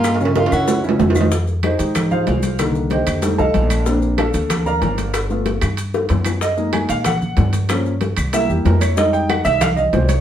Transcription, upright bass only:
\new Staff \with { instrumentName = "Upright bass" } { \clef bass \time 4/4 \key f \minor \tempo 4 = 188 g,4. ges,4. f,4~ | f,4. aes,4. c,4~ | c,4. f,4 c,8 bes,,4~ | bes,,4. d,4. g,,4~ |
g,,4. g,4. ges,4~ | ges,4. bes,4. g,4~ | g,4. c,4 e,8 f,4~ | f,4. c,4. c,4 | }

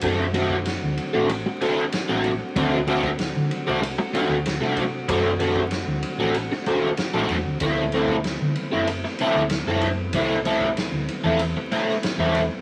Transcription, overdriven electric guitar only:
\new Staff \with { instrumentName = "Overdriven electric guitar" } { \time 4/4 \key d \mixolydian \tempo 4 = 95 <a c' fis' a'>16 r16 <a c' fis' a'>16 r4 <a c' fis' a'>16 r8 <a c' fis' a'>16 r8 <a c' fis' a'>16 r8 | <a c' fis' a'>16 r16 <a c' fis' a'>16 r4 <a c' fis' a'>16 r8 <a c' fis' a'>16 r8 <a c' fis' a'>16 r8 | <a c' fis' a'>16 r16 <a c' fis' a'>16 r4 <a c' fis' a'>16 r8 <a c' fis' a'>16 r8 <a c' fis' a'>16 r8 | <a c' e' a'>16 r16 <a c' e' a'>16 r4 <a c' e' a'>16 r8 <a c' e' a'>16 r8 <a c' e' a'>16 r8 |
<a c' e' a'>16 r16 <a c' e' a'>16 r4 <a c' e' a'>16 r8 <a c' e' a'>16 r8 <a c' e' a'>16 r8 | }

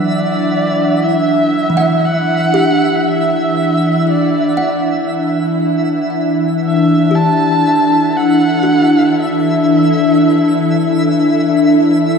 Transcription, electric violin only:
\new Staff \with { instrumentName = "Electric violin" } { \time 3/4 \key e \minor \tempo 4 = 59 d''4 e''4 fis''4 | e''4 d''4 r4 | r8 e''8 a''4 fis''4 | e''2 r4 | }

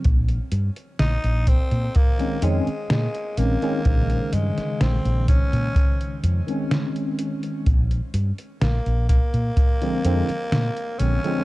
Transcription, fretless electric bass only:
\new Staff \with { instrumentName = "Fretless electric bass" } { \clef bass \time 4/4 \key bes \dorian \tempo 4 = 63 bes,,16 r16 g,16 r16 bes,,16 bes,,16 r16 bes,16 r8 f,16 r16 bes,16 r16 bes,,16 r16 | bes,,16 r16 g,16 r16 bes,,16 bes,,16 r16 bes,16 r8 f,16 r4 r16 | bes,,16 r16 g,16 r16 bes,,16 bes,,16 r16 bes,16 r8 f,16 r16 bes,16 r16 bes,,16 r16 | }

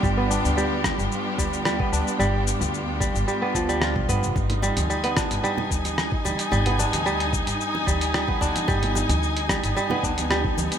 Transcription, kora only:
\new Staff \with { instrumentName = "Kora" } { \clef bass \time 4/4 \tempo 4 = 111 g16 b16 d'8 g16 r4 r16 g8 g16 b16 d'8 | g16 r4 r16 g8 g16 b16 f16 g16 f'16 r16 b16 r16 | r8 g8 g16 b16 d'8 g16 r4 r16 g8 | g16 b16 d'8 g16 r4 r16 g8 g16 b16 d'8 |
g16 r4 r16 g8 g16 b16 d'8 g16 r8. | }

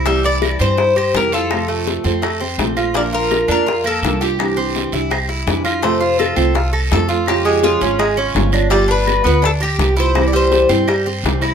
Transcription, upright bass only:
\new Staff \with { instrumentName = "Upright bass" } { \clef bass \time 4/4 \key f \major \tempo 4 = 166 c,4. g,4. f,4~ | f,4. f,4. bes,,4~ | bes,,4. f,4. c,4~ | c,4. c,4. f,4~ |
f,4. c,4. f,4~ | f,4. aes,,4. g,,4~ | g,,4. d,4. c,4~ | c,4. g,4. c,4 | }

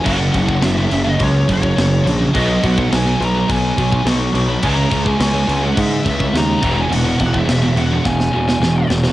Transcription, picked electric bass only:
\new Staff \with { instrumentName = "Picked electric bass" } { \clef bass \time 4/4 \key fes \lydian \tempo 4 = 105 ges,,8 ges,,8 ges,,8 ges,,8 des,8 ges,,8 ges,,8 bes,,8 | b,,8 b,,8 b,,8 b,,8 b,,8 b,,8 b,,8 b,,8 | des,8 des,8 des,8 des,8 aes,8 des,8 ees,8 e,,8 | e,,8 e,,8 e,,8 e,,8 e,,8 e,,8 e,,8 e,,8 | }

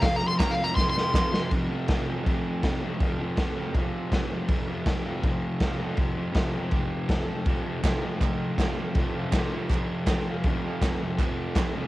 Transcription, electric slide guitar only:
\new Staff \with { instrumentName = "Electric slide guitar" } { \time 4/4 \key c \phrygian \tempo 4 = 161 \tuplet 3/2 { f''8 bes''8 c'''8 bes''8 f''8 bes''8 c'''8 c'''4~ } c'''4 | r1 | r1 | r1 |
r1 | r1 | r1 | r1 | }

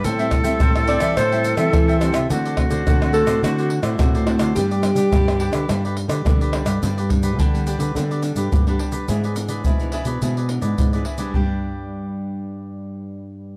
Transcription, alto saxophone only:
\new Staff \with { instrumentName = "Alto saxophone" } { \time 4/4 \key g \major \tempo 4 = 106 r4. d''8 c''8. a'8. g'8 | r4. a'8 fis'8. e'8. fis'8 | g'2. r4 | r1 |
r1 | r1 | }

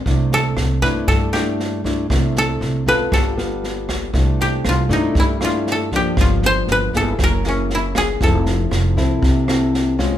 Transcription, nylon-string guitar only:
\new Staff \with { instrumentName = "Nylon-string guitar" } { \time 4/4 \key c \major \tempo 4 = 118 << { <a d' e'>4. <a d' e'>4 <a d' e'>4 <a d' e'>8 | <a d' e'>4. <b f' a'>4 <b f' a'>4. | <a d' e'>4. <a d' e'>4 <a d' e'>4 <f bes d'>8~ | <f bes d'>4. <bes e' aes'>4 <ais e' gis'>4. |
<c' e' a'>4. <c' e' a'>4 <c' e' a'>4 <aes des' f'>8 | } \\ { c2 g2 | c2 g2 | c2 g2 | g,2 fis2 |
f2 c2 | } >> }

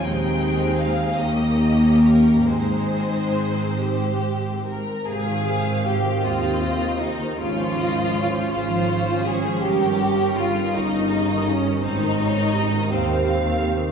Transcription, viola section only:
\new Staff \with { instrumentName = "Viola section" } { \clef bass \time 6/8 \key aes \major \tempo 4. = 53 << { c'4. des'4. | c'2~ c'8. r16 | c'2. | des'2.~ |
des'2.~ | des'4. c'4. | } \\ { aes4. bes4. | aes2~ aes8. r16 | c16 ees16 c16 ees16 c16 ees16 c16 ees16 c16 ees16 c16 ees16 | des16 f16 des16 f16 des16 f16 des16 f16 des16 f16 des16 f16 |
des16 ees16 des16 ees16 des16 ees16 des16 ees16 des16 ees16 des16 ees16 | c16 ees16 c16 ees16 c16 ees16 c16 ees16 c16 ees16 c16 ees16 | } >> }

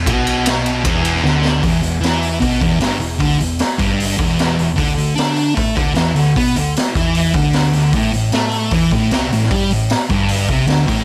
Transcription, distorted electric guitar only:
\new Staff \with { instrumentName = "Distorted electric guitar" } { \clef bass \time 4/4 \key d \lydian \tempo 4 = 152 b,2 e,4 d4 | e,8 e,8 e4 b,8 e,8 g,8 e,8 | d8 e,8 r8 g,4 e,4 e,8 | d8 d8 d'4 a8 d8 e8 d8 |
b8 d8 r8 e4 d4 d8 | a,8 a,8 a4 e8 a,8 c8 a,8 | g8 a,8 r8 g,4 c8 d8 a,8 | }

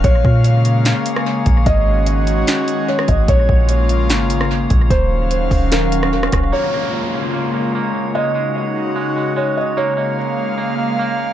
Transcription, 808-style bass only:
\new Staff \with { instrumentName = "808-style bass" } { \clef bass \time 4/4 \key bes \minor \tempo 4 = 148 bes,,8 bes,4.~ bes,16 r4 r16 bes,,8 | aes,,2 r4. aes,,8 | bes,,8 bes,,4. aes,,4. bes,,8 | ees,,4. ees,,2 ees,,8 |
r1 | r1 | r1 | }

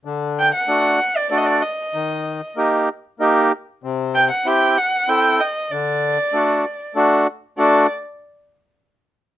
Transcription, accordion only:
\new Staff \with { instrumentName = "Accordion" } { \time 3/4 \tempo 4 = 96 d4 <a d' fis'>8 r8 <a d' fis'>8 r8 | ees4 <bes ees' g'>8 r8 <bes ees' g'>8 r8 | c4 <c' e' g'>8 r8 <c' e' a'>8 r8 | d4 <a d' fis'>8 r8 <a d' fis'>8 r8 |
<a d' fis'>8 r2 r8 | }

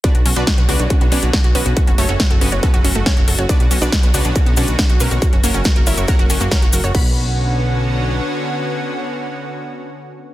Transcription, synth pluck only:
\new Staff \with { instrumentName = "Synth pluck" } { \time 4/4 \key b \minor \tempo 4 = 139 <d' fis' b' d''>16 fis'16 fis'16 <d' fis' b' d''>16 fis'16 fis'16 <d' fis' b' d''>16 fis'16 fis'16 fis'16 <d' fis' b' d''>16 fis'16 fis'16 fis'16 <b cis' fis' b'>16 fis'16 | fis'16 fis'16 <cis' fis' a' cis''>16 fis'16 fis'16 fis'16 <b cis' fis' b'>16 fis'16 <b cis' fis' b'>16 fis'16 fis'16 fis'16 <cis' fis' a' cis''>16 fis'16 fis'16 fis'16 | <d' fis' b' d''>16 fis'16 fis'16 <d' fis' b' d''>16 fis'16 fis'16 <d' fis' b' d''>16 fis'16 fis'16 fis'16 <d' fis' b' d''>16 fis'16 fis'16 fis'16 <ais cis' fis' ais'>16 fis'16 | fis'16 fis'16 <cis' fis' ais' cis''>16 fis'16 fis'16 fis'16 <e' ais' cis'' e''>16 fis'16 <fis' ais' cis'' fis''>16 fis'16 fis'16 fis'16 <ais' cis'' fis'' ais''>16 fis'16 fis'16 fis'16 |
b''1~ | b''1 | }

